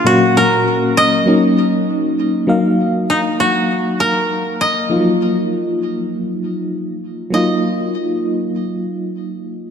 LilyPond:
<<
  \new Staff \with { instrumentName = "Koto" } { \time 4/4 \key ees \minor \tempo 4 = 99 ges'8 bes'4 ees''2 r8 | r4 ees'8 ges'4 bes'4 ees''8~ | ees''2.~ ees''8 r8 | ees''1 | }
  \new Staff \with { instrumentName = "FM electric piano" } { \time 4/4 \key ees \minor <bes, ges bes des' ges'>2 <ges bes des' ees'>2 | <ges bes ees' f''>1 | <f ges bes ees' f'>1 | <ges bes ees' f'>1 | }
>>